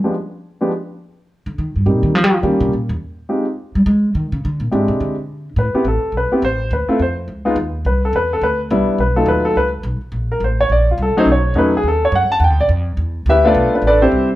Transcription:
0.04 grand piano F3 G#3 B3 D4 G4
0.61 grand piano F3 G#3 B3 D4 G4
1.46 upright bass D3
1.58 upright bass D#3
1.76 upright bass G2
1.86 upright bass A#2, grand piano G3 A#3 C4 D#4 G4
2.03 upright bass D#3
2.15 upright bass F3
2.24 upright bass G3
2.34 upright bass F3
2.43 upright bass D#3, grand piano G3 A#3 C#4 F4 G4
2.60 upright bass C3
2.73 upright bass A#2
2.89 upright bass E2
3.29 grand piano G#3 C4 D#4 F4 G4
3.75 upright bass G3
3.86 upright bass G#3
4.15 upright bass D#3
4.32 upright bass C#3
4.45 upright bass D3
4.60 upright bass A#2
4.71 upright bass G#2, grand piano G#3 C4 D4 E4 G4
4.88 upright bass C3
5.00 upright bass D3
5.56 upright bass A2, grand piano B4
5.74 grand piano B3 C4 E4 G4, muted upright bass stroke
5.84 upright bass A1, grand piano A4
6.03 muted upright bass stroke
6.12 upright bass B1
6.17 grand piano B4
6.32 grand piano B3 C4 E4 G4, muted upright bass stroke
6.42 upright bass A1, grand piano C5
6.71 upright bass D2, grand piano B4
6.88 grand piano A3 C4 E4 F4, muted upright bass stroke
6.99 upright bass F2, grand piano C5
7.28 upright bass C#2
7.45 grand piano G#3 B3 D#4 F4
7.56 upright bass D#2
7.85 upright bass C2, grand piano B4
8.05 grand piano A4
8.13 upright bass E2, grand piano B4
8.33 grand piano A4
8.41 upright bass D2, grand piano B4
8.70 upright bass C2, grand piano G3 B3 D4 E4
8.88 muted upright bass stroke
8.98 upright bass B1, grand piano B4
9.16 grand piano F#3 A3 D#4 F4 A4
9.26 upright bass D#2, grand piano B4
9.45 grand piano A4
9.56 upright bass C#2, grand piano B4
9.83 upright bass B1
10.01 muted upright bass stroke
10.12 upright bass A#1
10.32 grand piano A#4
10.40 upright bass A1, grand piano C5
10.61 grand piano C#5
10.69 upright bass A#1, grand piano D5
10.91 grand piano F4
10.98 upright bass C2
11.02 grand piano A4
11.16 grand piano F#3 A3 C#4 D#4 C5, muted upright bass stroke
11.25 upright bass B1
11.32 grand piano C#5
11.54 upright bass E2, grand piano F#3 A3 C#4 D#4
11.58 grand piano B4
11.77 grand piano G#4
11.83 upright bass D#2
11.88 grand piano A4
12.05 grand piano C#5
12.12 upright bass F#2, grand piano F#5
12.30 grand piano A5, muted upright bass stroke
12.40 upright bass E2, grand piano F#5
12.44 grand piano G5
12.50 upright bass D2
12.60 upright bass B1, grand piano D5
12.69 upright bass F2
12.97 upright bass E2
13.26 upright bass D2, grand piano E4 G4 E5
13.30 grand piano B4
13.44 grand piano A3 B3 D4 F4 A4 B4 D5
13.54 upright bass B1
13.72 grand piano B3 D4 F4 B4, muted upright bass stroke
13.82 upright bass A1
13.87 grand piano D4 A4 B4 D5
14.02 grand piano C4 E4 G4 C5
14.12 upright bass C2

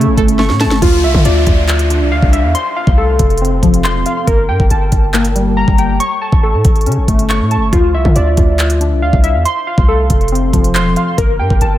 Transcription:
Already playing: analog synth pad C#3 A3 E4, synth pluck A3 C#4, synth keys C#4 A4 A5 C#6
0.01 closed hi-hat
0.07 808-style bass A1
0.17 808-style bass G1, synth keys A3, synth pluck A4, kick, closed hi-hat
0.28 closed hi-hat
0.39 synth pluck A3, synth keys C#6, snare
0.50 808-style bass A2, snare
0.60 synth keys A5, synth pluck A5, snare, closed hi-hat
0.66 808-style bass G1
0.71 snare
0.82 808-style bass D2, synth keys F4, kick, closed hi-hat, crash, downlifter
1.04 808-style bass C2, synth keys E5
1.14 808-style bass D3, kick
1.25 808-style bass D2, synth keys D5, closed hi-hat
1.47 808-style bass D2, kick, closed hi-hat
1.68 clap, closed hi-hat
1.79 closed hi-hat
1.90 synth keys D4, closed hi-hat
2.01 808-style bass C2
2.12 808-style bass D2, synth keys F5
2.22 808-style bass C2, kick
2.33 synth keys E5, closed hi-hat
2.44 808-style bass E2
2.55 synth keys C6, closed hi-hat
2.76 synth keys F5
2.87 808-style bass C2, kick
2.98 synth keys A4
3.19 808-style bass F1, kick, closed hi-hat
3.30 closed hi-hat
3.38 closed hi-hat
3.42 synth keys C4, closed hi-hat
3.63 808-style bass F1, synth keys F3, kick, closed hi-hat
3.74 closed hi-hat
3.84 808-style bass E1, synth keys C6, clap
4.06 synth keys F5, closed hi-hat
4.27 808-style bass G1, synth keys A#4, kick, closed hi-hat
4.49 808-style bass G2, synth keys G5
4.60 808-style bass G1, kick
4.70 808-style bass G1, synth keys A5, closed hi-hat
4.92 808-style bass G1, kick, closed hi-hat
5.14 synth keys A#3, clap, closed hi-hat
5.25 closed hi-hat
5.35 synth keys G3, closed hi-hat
5.57 synth keys A#5
5.68 808-style bass G1, kick
5.78 synth keys G5, closed hi-hat
6.00 synth keys C#6, closed hi-hat
6.22 synth keys A5
6.32 808-style bass A1, kick
6.43 synth keys A4
6.54 808-style bass A2
6.65 808-style bass A1, kick, closed hi-hat
6.76 closed hi-hat
6.81 closed hi-hat
6.86 808-style bass C#3, synth keys C#4, closed hi-hat
6.92 closed hi-hat
6.97 808-style bass A1
7.08 808-style bass G1, synth keys A3, kick, closed hi-hat
7.19 closed hi-hat
7.30 synth keys C#6, clap
7.40 808-style bass A2
7.51 synth keys A5, closed hi-hat
7.57 808-style bass G1
7.73 808-style bass D2, synth keys F4, kick, closed hi-hat
7.94 808-style bass C2, synth keys E5
8.05 808-style bass D3, kick
8.16 808-style bass D2, synth keys D5, closed hi-hat
8.37 808-style bass D2, kick, closed hi-hat
8.59 clap, closed hi-hat
8.70 closed hi-hat
8.81 synth keys D4, closed hi-hat
8.91 808-style bass C2
9.02 808-style bass D2, synth keys F5
9.13 808-style bass C2, kick
9.24 synth keys E5, closed hi-hat
9.35 808-style bass E2
9.45 synth keys C6, closed hi-hat
9.67 synth keys F5
9.78 808-style bass C2, kick
9.88 synth keys A4
10.10 808-style bass F1, kick, closed hi-hat
10.21 closed hi-hat
10.28 closed hi-hat
10.32 synth keys C4, closed hi-hat
10.53 808-style bass F1, synth keys F3, kick, closed hi-hat
10.64 closed hi-hat
10.75 808-style bass E1, synth keys C6, clap
10.96 synth keys F5, closed hi-hat
11.18 808-style bass G1, synth keys A#4, kick, closed hi-hat
11.39 808-style bass G2, synth keys G5
11.50 808-style bass G1, kick
11.61 808-style bass G1, synth keys A5, closed hi-hat

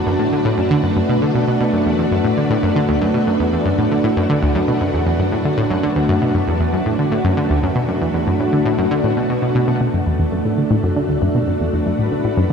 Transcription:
Already playing: string machine A3 D4 F#4 B4
0.07 synth arpeggio sound F#2
0.19 synth arpeggio sound A2
0.32 synth arpeggio sound D3
0.45 synth arpeggio sound A2
0.58 synth arpeggio sound F#2
0.71 synth arpeggio sound D3
0.84 synth arpeggio sound F#2
0.96 synth arpeggio sound F#2
1.09 synth arpeggio sound B2
1.22 synth arpeggio sound D3
1.35 synth arpeggio sound B2
1.48 synth arpeggio sound B2
1.60 synth arpeggio sound B2
1.73 synth arpeggio sound F#2
1.86 synth arpeggio sound E2
1.99 synth arpeggio sound E2
2.12 synth arpeggio sound F#2
2.25 synth arpeggio sound A2
2.37 synth arpeggio sound D3
2.50 synth arpeggio sound A2
2.63 synth arpeggio sound F#2
2.76 synth arpeggio sound D3
2.89 synth arpeggio sound D2
3.02 synth arpeggio sound F#2
3.14 synth arpeggio sound B2
3.27 synth arpeggio sound F#2
3.40 synth arpeggio sound E2
3.53 synth arpeggio sound E2
3.66 synth arpeggio sound F#2
3.78 synth arpeggio sound A2
3.91 synth arpeggio sound D3
4.04 synth arpeggio sound A2
4.17 synth arpeggio sound F#2
4.30 synth arpeggio sound D3
4.43 synth arpeggio sound D2
4.55 synth arpeggio sound F#2
4.68 synth arpeggio sound B2
4.81 synth arpeggio sound F#2
4.94 synth arpeggio sound E2
5.07 synth arpeggio sound E2
5.19 synth arpeggio sound F#2
5.32 synth arpeggio sound A2
5.45 synth arpeggio sound D3
5.58 synth arpeggio sound A2
5.71 synth arpeggio sound F#2
5.83 synth arpeggio sound D3
5.96 synth arpeggio sound D2
6.09 synth arpeggio sound F#2
6.22 synth arpeggio sound B2
6.35 synth arpeggio sound F#2
6.48 synth arpeggio sound E2
6.60 synth arpeggio sound E2
6.73 synth arpeggio sound F#2
6.86 synth arpeggio sound A2
6.99 synth arpeggio sound D3
7.12 synth arpeggio sound A2
7.24 synth arpeggio sound F#2
7.37 synth arpeggio sound D3
7.50 synth arpeggio sound D2
7.63 synth arpeggio sound F#2
7.76 synth arpeggio sound B2
7.88 synth arpeggio sound F#2
8.01 synth arpeggio sound E2
8.14 synth arpeggio sound E2
8.27 synth arpeggio sound F#2
8.40 synth arpeggio sound A2
8.53 synth arpeggio sound D3
8.66 synth arpeggio sound A2
8.78 synth arpeggio sound F#2
8.91 synth arpeggio sound D3
9.04 synth arpeggio sound A2
9.17 synth arpeggio sound B2
9.30 synth arpeggio sound B2
9.42 synth arpeggio sound B2
9.55 synth arpeggio sound B2
9.68 synth arpeggio sound B2
9.81 synth arpeggio sound B2, string machine A3
9.94 synth arpeggio sound F#2
10.06 synth arpeggio sound E2
10.19 synth arpeggio sound E2, string machine D4
10.32 synth arpeggio sound F#2
10.45 synth arpeggio sound A2
10.58 synth arpeggio sound D3
10.63 string machine F#4
10.71 synth arpeggio sound A2
10.83 synth arpeggio sound F#2
10.96 synth arpeggio sound D3
11.09 synth arpeggio sound D2
11.22 synth arpeggio sound F#2
11.35 synth arpeggio sound B2
11.48 synth arpeggio sound F#2
11.60 synth arpeggio sound E2
11.70 synth arpeggio sound E2, string machine B4
11.86 synth arpeggio sound F#2
11.99 synth arpeggio sound A2
12.12 synth arpeggio sound D3
12.24 synth arpeggio sound A2
12.37 synth arpeggio sound F#2

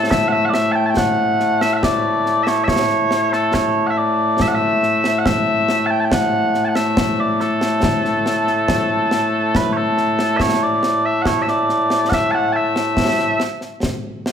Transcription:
Already playing: bagpipes A2 A3 A4
0.11 bagpipes E5, concert bass drum, snare
0.28 bagpipes F#5
0.32 bagpipes E5
0.45 bagpipes F#5
0.49 bagpipes D5
0.54 bagpipes E5, snare
0.72 bagpipes G5 A5
0.86 bagpipes A5
0.90 bagpipes G5
0.97 bagpipes F#5, concert bass drum, snare
1.40 snare
1.61 bagpipes E5, snare
1.73 bagpipes E5 F#5
1.83 bagpipes D5, concert bass drum, snare
2.26 snare
2.43 bagpipes E5, snare
2.47 bagpipes C#5
2.64 bagpipes E5
2.68 bagpipes C#5, concert bass drum, snare
2.89 snare
3.11 snare
3.33 bagpipes A4, snare
3.54 bagpipes C#5, concert bass drum, snare
3.87 bagpipes E5 F#5
3.97 bagpipes D5
4.40 bagpipes E5, concert bass drum, snare
4.48 bagpipes F#5
4.55 bagpipes E5
4.83 snare
5.04 snare
5.19 bagpipes F#5
5.26 bagpipes E5, concert bass drum, snare
5.69 snare
5.86 bagpipes A5
5.91 bagpipes G5
6.00 bagpipes A5
6.05 bagpipes G5
6.12 bagpipes F#5, concert bass drum, snare
6.54 snare
6.65 bagpipes F#5 A5
6.75 bagpipes E5, snare
6.97 concert bass drum, snare
7.20 bagpipes D5
7.40 bagpipes A4, snare
7.61 snare
7.83 concert bass drum, snare
8.05 snare
8.26 snare
8.47 snare
8.68 concert bass drum, snare
9.11 snare
9.55 bagpipes B4, concert bass drum, snare
9.73 bagpipes A4 C#5
9.97 snare
10.19 snare
10.37 bagpipes E5, concert bass drum, snare
10.41 bagpipes C#5
10.63 bagpipes D5
10.83 snare
11.05 bagpipes E5
11.22 bagpipes F#5, concert bass drum, snare
11.27 bagpipes C#5
11.42 bagpipes E5
11.48 bagpipes D5, snare
11.69 snare
11.90 snare
12.09 bagpipes F#5, concert bass drum, snare
12.14 bagpipes E5
12.31 bagpipes F#5 A5
12.52 bagpipes E5 A5
12.76 snare
12.97 concert bass drum, snare
13.19 snare
13.40 snare
13.61 snare
13.83 concert bass drum, snare
14.26 snare

